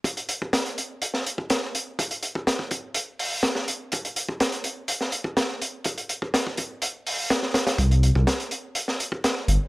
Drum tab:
HH |xxx-xxx-x-x-x-x-|xxx-x-x-x-o-x-x-|xxx-xxx-x-x-x-x-|xxx-x-x-x-o-x-xx|
SD |----o----o--o---|----o-------oo--|----o----o--o---|----o-------oooo|
BD |o--o-------o----|o--o-oo---------|o--o-------o----|o--o-oo---------|

HH |xxx-xxx-x-x-x-x-|
SD |----o----o--o---|
BD |o--o-------o----|